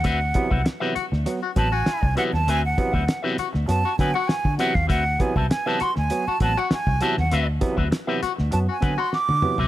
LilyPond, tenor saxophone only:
\new Staff \with { instrumentName = "Tenor saxophone" } { \time 4/4 \key d \mixolydian \tempo 4 = 99 r4. fis'16 r8 fis'16 r16 fis'8. r8 | r4. fis'16 r8 fis'16 r16 fis'8 r8. | r4. fis'16 r8 fis'16 r16 fis'8 r8. | r4. fis'16 r8 fis'16 r16 fis'8 r8. | }